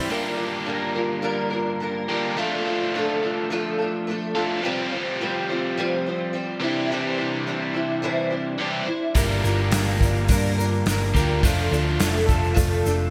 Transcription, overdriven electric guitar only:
0.00 0.11 C4 medium
0.00 0.11 E4 medium
0.10 2.07 G2 medium
0.10 2.07 D3 medium
0.10 2.07 G3 medium
0.10 2.07 A#3 medium
0.10 2.08 D4 medium
0.10 2.07 G4 medium
2.08 2.36 G2 medium
2.08 2.36 D3 medium
2.08 2.36 G3 medium
2.08 2.36 A#3 medium
2.08 2.36 D4 medium
2.08 2.35 G4 medium
2.37 4.34 F3 medium
2.37 4.34 A3 medium
2.37 4.34 D4 medium
2.37 4.34 F4 medium
4.35 4.60 F3 medium
4.35 4.62 A3 medium
4.35 4.62 D4 medium
4.35 4.62 F4 medium
4.62 6.59 F3 medium
4.62 6.61 G3 medium
4.62 6.60 C4 medium
4.62 6.62 G4 medium
6.60 8.57 C3 medium
6.60 8.58 E3 medium
6.60 8.58 G3 medium
6.60 8.58 C4 medium
6.60 8.59 G4 medium
8.59 8.86 C3 medium
8.59 8.86 E3 medium
8.59 8.87 G3 medium
8.59 8.87 C4 medium
8.59 8.87 G4 medium
9.15 11.12 G2 medium
9.15 11.13 D3 medium
9.15 11.13 G3 medium
9.15 11.13 A#3 medium
9.15 11.13 D4 medium
9.15 11.13 G4 medium
11.14 11.42 G2 medium
11.14 11.42 D3 medium
11.14 11.42 G3 medium
11.14 11.42 A#3 medium
11.14 11.42 D4 medium
11.14 11.41 G4 medium
11.43 13.10 F3 medium
11.43 13.10 A3 medium
11.43 13.10 D4 medium
11.43 13.10 F4 medium

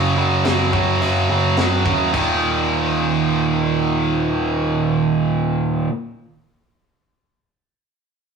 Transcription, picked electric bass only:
0.00 0.43 F#1 medium
0.46 0.73 F#1 medium
0.73 1.00 F#2 medium
1.02 1.28 F#1 medium
1.31 1.57 F#1 medium
1.59 1.85 F#2 medium
1.86 2.13 D#1 medium
2.14 5.86 D#1 medium

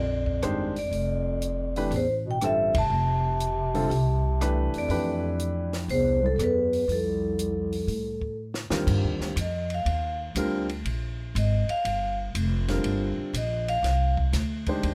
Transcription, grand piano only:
0.42 0.73 D#3 medium
0.42 0.73 G#3 medium
0.42 0.73 D4 medium
0.42 0.73 G4 medium
0.42 0.73 C5 medium
1.76 1.91 E3 medium
1.76 1.91 A3 medium
1.76 1.91 D4 medium
1.76 1.91 G4 medium
1.76 1.91 B4 medium
2.42 2.72 D3 medium
2.42 2.72 G3 medium
2.42 2.73 C4 medium
2.42 2.73 F4 medium
2.42 2.73 A4 medium
3.74 3.89 D3 medium
3.74 3.89 G3 medium
3.74 3.89 C4 medium
3.74 3.89 F4 medium
3.74 3.89 A4 medium
4.40 4.88 E3 medium
4.40 4.88 A3 medium
4.40 4.89 D4 medium
4.40 4.89 G4 medium
4.40 4.89 B4 medium
4.90 6.29 E3 medium
4.90 6.29 A3 medium
4.90 6.29 D4 medium
4.90 6.29 G4 medium
4.90 6.30 B4 medium
8.71 9.34 D#2 medium
8.71 9.34 D3 medium
8.71 9.34 G3 medium
8.71 9.34 C4 medium
8.71 9.34 F4 medium
8.71 9.34 A#4 medium
10.37 10.67 D3 medium
10.37 10.67 G3 medium
10.37 10.67 C4 medium
10.37 10.67 F4 medium
10.37 10.67 A#4 medium
12.69 13.31 D3 medium
12.69 13.32 G3 medium
12.69 13.32 C4 medium
12.69 13.32 F4 medium
12.69 13.32 A#4 medium
14.68 14.94 D#3 medium
14.68 14.94 G#3 medium
14.68 14.94 D4 medium
14.68 14.94 G4 medium
14.68 14.94 C5 medium

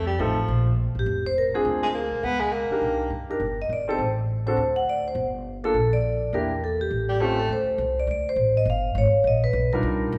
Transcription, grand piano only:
0.20 0.36 A3 medium
0.20 0.36 C4 medium
0.20 0.36 D#4 medium
0.20 0.36 A4 medium
1.54 1.93 C4 medium
1.54 1.93 D4 medium
1.54 1.93 F4 medium
1.54 1.93 G#4 medium
2.71 3.09 D4 medium
2.71 3.10 D#4 medium
2.71 3.10 G4 medium
2.71 3.10 A#4 medium
3.30 3.40 D4 medium
3.30 3.40 D#4 soft
3.30 3.40 G4 medium
3.30 3.41 A#4 medium
3.88 3.98 C4 medium
3.88 3.99 D#4 medium
3.88 3.99 G4 medium
3.88 3.99 A4 medium
4.46 4.57 C4 medium
4.46 4.57 D4 medium
4.46 4.58 F#4 medium
4.46 4.58 A4 medium
5.64 5.74 A#3 medium
5.64 5.74 D4 medium
5.64 5.75 F4 medium
5.64 5.75 A4 medium
6.33 6.49 A#3 medium
6.33 6.49 D4 medium
6.33 6.50 E4 medium
6.33 6.50 G4 medium
7.20 7.37 C4 medium
7.20 7.37 C#4 medium
7.20 7.37 F4 medium
7.20 7.37 G4 medium
9.73 10.11 G3 medium
9.73 10.11 D4 medium
9.73 10.12 D#4 medium
9.73 10.12 F4 medium
9.73 10.12 A#4 medium

